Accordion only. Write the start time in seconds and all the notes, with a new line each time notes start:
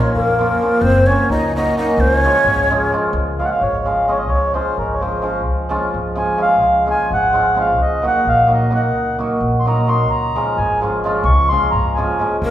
0.13 A#3
0.82 C4
1.07 C#4
1.30 D#4
1.55 D#4
1.77 D#4
1.99 C#4
3.39 F5
3.45 F#5
3.51 F5
3.62 C#5
3.85 F5
4.08 C#5 D#5
4.19 D#5
4.29 C#5
4.54 C5
4.78 A#4
4.93 C#5
5.01 C5
6.18 G#5
6.42 F5
6.91 G#5
7.13 F#5
7.60 F5
7.82 D#5
8.07 F#5
8.28 F5
8.54 D#5
8.75 F#5
9.60 C6
9.68 A#5
9.88 C6
10.10 A#5
10.57 G#5
11.25 C#6
11.49 C6
11.71 A#5
11.94 G#5
12.43 A#3